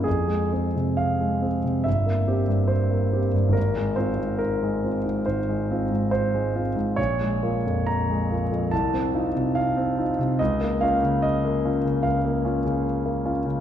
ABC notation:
X:1
M:4/4
L:1/16
Q:1/4=71
K:Fm
V:1 name="Grand piano"
A4 f4 =e4 c4 | B2 c2 B4 c4 c4 | d4 b4 =a4 f4 | e2 f2 e4 f4 z4 |]
V:2 name="Grand piano"
F,, A, [CA] C,2 A, [CA] C, G,,, B, [CG] G,,2 B, [CG] G,, | A,,, A, [CF] A,,2 A, [CF] A,, A,,, A, [CF] A,,2 A, [CF] A,, | B,,, A, [B,F] F,,2 A, [B,F] F,, C,, C [EF] C,2 C [EF] C, | D,, B, [DF] D,2 B, [DF] D, D,, B, [DF] D,2 B, [DF] D, |]